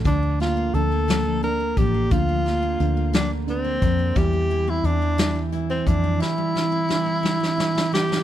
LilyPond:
<<
  \new Staff \with { instrumentName = "Tenor saxophone" } { \time 6/8 \key bes \lydian \tempo 4. = 58 d'8 f'8 a'4 bes'8 g'8 | f'4. d'8 c'4 | g'8. e'16 d'8. r8 c'16 d'8 | e'2~ e'8 g'8 | }
  \new Staff \with { instrumentName = "Steel-string acoustic guitar" } { \clef bass \time 6/8 \key bes \lydian f16 f16 d'16 bes16 f16 bes16 f16 f16 d'16 bes16 f16 bes16 | f16 f16 d'16 bes16 f16 bes16 f16 f16 d'16 bes16 f16 bes16 | g16 g16 e'16 c'16 g16 c'16 g16 g16 e'16 c'16 g16 c'16 | g16 g16 e'16 c'16 g16 c'16 g16 g16 e'16 c'16 g16 c'16 | }
  \new Staff \with { instrumentName = "Felt piano" } { \clef bass \time 6/8 \key bes \lydian d8 bes8 d8 bes8 d8 bes8 | d8 bes8 d8 bes8 d8 bes8 | e8 e8 e8 e8 e8 e8 | e8 e8 e8 e8 e8 e8 | }
  \new Staff \with { instrumentName = "Fingered electric bass" } { \clef bass \time 6/8 \key bes \lydian d,4 d,4. a,,8 | d,4 d,4. f,8 | e,4 e,4. f,8 | r2. | }
  \new DrumStaff \with { instrumentName = "Drums" } \drummode { \time 6/8 <hh bd>8 <hh sn>8 hh8 <hh sn>8 hh8 <hh bd>8 | <hh bd>8 <hh sn>8 hh8 <hh sn>8 hh8 <hh bd>8 | <hh bd>8 hh8 hh8 <hh sn>8 hh8 <hh bd>8 | sn8 sn8 sn8 sn16 sn16 sn16 sn16 sn16 sn16 | }
>>